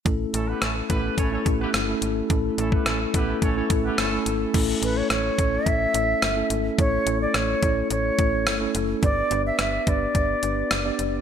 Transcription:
<<
  \new Staff \with { instrumentName = "Bansuri" } { \time 4/4 \key a \mixolydian \tempo 4 = 107 r1 | r1 | r8 b'16 cis''16 cis''4 e''4. r8 | cis''8. d''16 cis''4 cis''4. r8 |
d''8. e''16 e''8 d''2 r8 | }
  \new Staff \with { instrumentName = "Horn section" } { \time 4/4 \key a \mixolydian r8 <a cis' e' a'>16 <b e' g' b'>16 <a cis' e' a'>16 r16 <b e' g' b'>8 <cis' e' a' cis''>16 <cis' e' a' cis''>16 r16 <b e' g' b'>16 r4 | r8 <a cis' e' a'>16 <b e' g' b'>16 <a cis' e' a'>16 r16 <b e' g' b'>8 <cis' e' a' cis''>16 <cis' e' a' cis''>16 r16 <b e' g' b'>16 <a cis' e' a'>8 r8 | r1 | r1 |
r1 | }
  \new Staff \with { instrumentName = "Tine electric piano" } { \time 4/4 \key a \mixolydian <a cis' e' a'>4 r8 <a cis' e' a'>8 r16 <a cis' e' a'>16 <a cis' e' g'>8 r16 <a cis' e' a'>8 r16 | <a cis' e' a'>4 r8 <a cis' e' a'>8 r16 <a cis' e' a'>16 <a cis' e' a'>8 r16 <a cis' e' a'>8 r16 | <a cis' e' a'>16 r16 <a cis' e' a'>8 r8 <a cis' e' a'>8 r8 <a cis' e' a'>8 r16 <a cis' e' a'>8 r16 | <a cis' e' a'>16 r16 <a cis' e' a'>8 r8 <a cis' e' a'>8 r8 <a cis' e' a'>8 r16 <a cis' e' a'>8 r16 |
<b d' g' b'>16 r16 <b d' g' b'>8 r8 <b d' g' b'>8 r8 <b d' g' b'>8 r16 <b d' g' d''>8 r16 | }
  \new Staff \with { instrumentName = "FM bass" } { \clef bass \time 4/4 \key a \mixolydian a,,8 a,,8 a,,8 a,,8 a,,8 a,,8 g,,8 gis,,8 | a,,8 a,,8 a,,8 a,,8 a,,8 a,,8 g,,8 gis,,8 | a,,8 a,,8 a,,8 a,,8 a,,8 a,,8 g,,8 gis,,8 | a,,8 a,,8 a,,8 a,,8 a,,8 a,,8 g,,8 fis,,8 |
g,,8 g,,8 g,,8 g,,8 g,,8 g,,8 fis,,8 fis,,8 | }
  \new DrumStaff \with { instrumentName = "Drums" } \drummode { \time 4/4 <hh bd>8 hh8 <hh ss>8 <hh bd>8 <hh bd>8 <hh bd>8 <hh ss>8 hh8 | <hh bd>8 hh16 bd16 <hh ss>8 <hh bd>8 <hh bd>8 <hh bd>8 <hh ss>8 hh8 | <cymc hh bd>8 hh8 <hh ss>8 <hh bd>8 <hh bd>8 hh8 <hh ss>8 hh8 | <hh bd>8 hh8 <hh ss>8 <hh bd>8 hh8 <hh bd>8 <hh ss>8 hh8 |
<hh bd>8 hh8 <hh ss>8 <hh bd>8 <hh bd>8 hh8 <hh ss>8 hh8 | }
>>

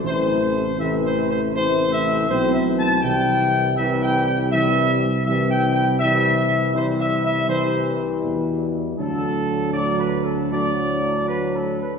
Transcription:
<<
  \new Staff \with { instrumentName = "Trumpet section" } { \time 4/4 \key c \lydian \tempo 4 = 80 c''4 \tuplet 3/2 { e''8 c''8 c''8 } c''8 e''8 \tuplet 3/2 { c''8 e''8 a''8 } | g''4 \tuplet 3/2 { e''8 g''8 g''8 } e''4 \tuplet 3/2 { e''8 g''8 g''8 } | e''4 \tuplet 3/2 { c''8 e''8 e''8 } c''8 r4. | a'4 \tuplet 3/2 { d''8 b'8 a'8 } d''4 \tuplet 3/2 { b'8 a'8 b'8 } | }
  \new Staff \with { instrumentName = "French horn section" } { \time 4/4 \key c \lydian <a e'>4 <a e'>4 <a e'>4 <a e'>4 | <g e'>4 <g e'>4 <g e'>4 <g e'>4 | <g e'>4 <g e'>4 <g e'>2 | <fis d'>4 <fis d'>4 <fis d'>2 | }
  \new Staff \with { instrumentName = "Trombone section" } { \clef bass \time 4/4 \key c \lydian << { e4 e4 e4 e4 | e4 e4 e4 e4 | e4 e4 e2 | fis4 fis4 fis2 | } \\ { c4 c4 c4 c'4 | c4 c4 c4 c4 | c4 c4 c4 b,4 | a,4 a,4 a,2 | } >> }
  \new Staff \with { instrumentName = "Tuba" } { \clef bass \time 4/4 \key c \lydian a,,2. b,,4 | c,1~ | c,2~ c,8 r8 e,4 | d,1 | }
>>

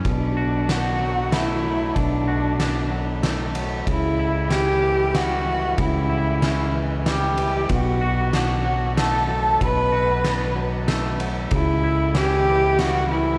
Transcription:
<<
  \new Staff \with { instrumentName = "Cello" } { \time 3/4 \key b \minor \tempo 4 = 94 d'4 fis'4 e'4 | d'4. r4. | e'4 g'4 fis'4 | e'4. r8 g'4 |
fis'4 fis'4 a'4 | b'4. r4. | e'4 g'4 fis'8 e'8 | }
  \new Staff \with { instrumentName = "Clean electric guitar" } { \clef bass \time 3/4 \key b \minor b,8 fis'8 d'8 fis8 a8 fis8 | b,8 fis'8 d'8 fis8 a8 fis8 | cis8 e'8 cis'8 e8 g8 e8 | cis8 e'8 cis'8 e8 g8 e8 |
b,8 fis'8 d'8 fis8 a8 fis8 | b,8 fis'8 d'8 fis8 a8 fis8 | cis8 e'8 cis'8 e8 g8 e8 | }
  \new Staff \with { instrumentName = "Fingered electric bass" } { \clef bass \time 3/4 \key b \minor b,,2. | b,,2. | cis,2. | cis,2. |
b,,2. | b,,2. | cis,2. | }
  \new DrumStaff \with { instrumentName = "Drums" } \drummode { \time 3/4 <bd cymr>4 <cymr sn>4 <cymr sn>4 | <bd cymr>4 <cymr sn>4 <cymr sn>8 cymr8 | <bd cymr>4 <cymr sn>4 <cymr sn>4 | <bd cymr>4 <cymr sn>4 <cymr sn>8 cymr8 |
<bd cymr>4 <cymr sn>4 <cymr sn>4 | <bd cymr>4 <cymr sn>4 <cymr sn>8 cymr8 | <bd cymr>4 <cymr sn>4 <cymr sn>4 | }
>>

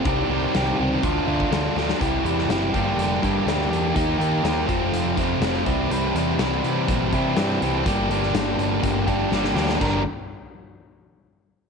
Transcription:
<<
  \new Staff \with { instrumentName = "Distorted electric guitar" } { \time 4/4 \key d \phrygian \tempo 4 = 123 <c ees g c' g'>8 <c ees g c' g'>8 <c ees g c' g'>8 <c ees g c' g'>8 <d a d' f'>8 <d a d' f'>8 <d a d' f'>8 <d a d' f'>8 | \key g \dorian <c e g e' g'>8 <g e' g'>8 <c e g e' g'>8 <g, d g bes d' g'>4 <g bes d' g'>8 <g bes d' g'>8 <g bes d' g'>8 | <ees bes ees' g'>8 <bes ees' g'>8 <ees bes ees' g'>8 <f, c f a c' f'>4 <f a c' f'>8 <f a c' f'>8 <c e g c' e'>8 | <c e g c' e'>8 <g c' e'>8 <c e g c' e'>4. <g c' e'>8 <e g c' e'>8 <g c' e'>8 |
<g, d g bes d' g'>8 <g bes d' g'>8 <g, d g bes d' g'>4. <g bes d' g'>8 <g bes d' g'>8 <g bes d' g'>8 | <g, d g bes d' bes'>8 r2. r8 | }
  \new Staff \with { instrumentName = "Picked electric bass" } { \clef bass \time 4/4 \key d \phrygian c,8 c,8 c,8 cis,8 d,8 d,8 d,8 d,8 | \key g \dorian c,8 e,8 fis,,8 g,,8 f,,8 g,8 d,8 e,8 | ees,8 ees,8 ees,8 f,,8 f,,4 f,,8 c,8 | c,8 e,8 c,8 c8 bes,,8 c8 g,8 c,8 |
g,,8 g,,8 g,,8 g,,8 g,,4 g,,8 d,8 | g,,8 r2. r8 | }
  \new DrumStaff \with { instrumentName = "Drums" } \drummode { \time 4/4 <hh bd>4 <hh sn>4 <hh bd>8. bd16 <hh sn>8 sn16 sn16 | <hh bd>8 hh16 sn16 <hh sn>8 <hh bd>8 hh8 <hh bd>8 <hh sn>16 sn16 hh8 | <hh bd>8 hh8 <hh sn>8 <hh bd>8 hh8 <hh bd>8 <hh sn>16 sn16 <hh bd>8 | hh8 hh8 <hh sn>8 hh8 <hh bd>8 <hh bd>8 <hh sn>16 sn16 hh8 |
<hh bd>8 hh16 sn16 <hh sn>8 hh8 <hh bd>8 <hh bd>8 sn16 sn16 sn16 sn16 | <cymc bd>4 r4 r4 r4 | }
>>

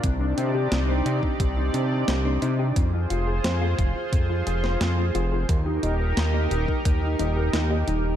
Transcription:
<<
  \new Staff \with { instrumentName = "Analog synth pad" } { \time 4/4 \key c \minor \tempo 4 = 88 <c' d' ees' g' d''>1 | <f' aes' c''>1 | <ees' g' bes'>1 | }
  \new Staff \with { instrumentName = "Clean electric guitar" } { \time 4/4 \key c \minor r16 c'16 c''16 g'16 r16 c''16 c'16 c'16 r16 c'16 c''16 g'16 r16 c''16 c'16 c'16 | r16 f'16 f''16 c''16 r16 f''16 f'16 f'16 r16 f'16 aes'16 c''16 r16 f'16 aes'16 f'16 | r16 ees'16 ees''16 bes'16 r16 ees''16 ees'16 ees'16 r16 ees'16 ees''16 bes'16 r16 ees''16 ees'16 ees'16 | }
  \new Staff \with { instrumentName = "Synth arpeggio sound" } { \time 4/4 \key c \minor c'16 d'16 ees'16 g'16 c'16 r16 d'16 ees'16 g'16 ees'16 d'16 r16 c'16 d'16 ees'16 g'16 | c'16 r16 f'16 aes'16 c''16 aes'16 f'16 r16 c'16 f'16 aes'16 c''16 c'16 r16 f'16 aes'16 | bes'16 g'16 ees'16 r16 bes16 ees'16 g'16 bes'16 bes16 r16 ees'16 g'16 bes'16 g'16 ees'16 r16 | }
  \new Staff \with { instrumentName = "Analog synth bass" } { \clef bass \time 4/4 \key c \minor c,8 c8 c,8 c8 c,8 c8 c,8 c8 | f,8 f,,8 f,8 f,,8 f,8 f,,8 f,8 f,,8 | ees,8 ees,,8 ees,8 ees,,8 ees,8 ees,,8 ees,8 ees,,8 | }
  \new DrumStaff \with { instrumentName = "Drums" } \drummode { \time 4/4 <hh bd>8 hh8 <hh sn>8 hh16 bd16 <hh bd>8 hh8 <hh sn>8 hh8 | <hh bd>8 hh8 <hh sn>8 <hh bd>8 <hh bd>8 hh16 sn16 <hh sn>8 hh8 | <hh bd>8 hh8 <hh sn>8 hh16 bd16 <hh bd>8 hh8 <hh sn>8 hh8 | }
>>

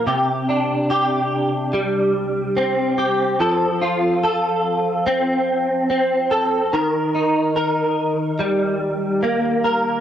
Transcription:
\new Staff \with { instrumentName = "Clean electric guitar" } { \time 4/4 \key f \mixolydian \tempo 4 = 72 <c g'>8 d'8 g'4 g4 c'8 g'8 | <f a'>8 f'8 a'4 c'4 c'8 a'8 | <ees bes'>8 ees'8 bes'4 g4 bes8 bes'8 | }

